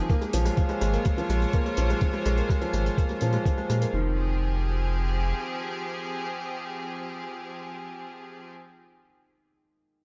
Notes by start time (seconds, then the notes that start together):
Already playing: D#3 F3 G#3 G4 G#4
0.09 A#3, kick, closed hi-hat
0.21 G#3, closed hi-hat
0.33 A#1 F3 C#5, closed hi-hat
0.45 G#3 F4, closed hi-hat
0.55 F3 C5, kick, closed hi-hat
0.69 G#3, closed hi-hat
0.81 G#1 G#3, closed hi-hat
0.93 A#3, closed hi-hat
1.05 G#3, kick, closed hi-hat
1.18 F3, closed hi-hat
1.29 A#1 G#3, closed hi-hat
1.41 closed hi-hat
1.53 A#3, kick, closed hi-hat
1.65 G#3, closed hi-hat
1.77 A#1 F3, closed hi-hat
1.90 G#3, closed hi-hat
2.01 F3, kick, closed hi-hat
2.13 G#3, closed hi-hat
2.25 A#1 G#3, closed hi-hat
2.37 A#3, closed hi-hat
2.50 G#3, kick, closed hi-hat
2.61 F3, closed hi-hat
2.73 G#1 G#3, closed hi-hat
2.86 closed hi-hat
2.97 A#3, kick, closed hi-hat
3.09 G#3, closed hi-hat
3.20 A#2 F3, closed hi-hat
3.32 G#3, closed hi-hat
3.46 kick, closed hi-hat
3.57 G#3, closed hi-hat
3.69 A#2 G#3, closed hi-hat
3.81 A#3, closed hi-hat
3.93 F1 D#3 F3
4.01 C4
4.08 G4
4.15 G#4